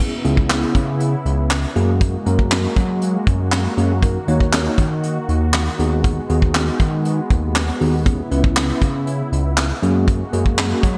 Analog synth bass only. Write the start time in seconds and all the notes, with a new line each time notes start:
0.25 C#2
0.75 C#3
1.25 C#2
1.76 F#2
2.26 F#2
2.76 F#3
3.27 F#2
3.77 F#2
4.28 D#2
4.78 D#3
5.29 D#2
5.79 D#2
6.30 D#2
6.80 D#3
7.30 D#2
7.81 D#2
8.31 C#2
8.82 C#3
9.32 C#2
9.83 F#2
10.33 F#2
10.83 F#3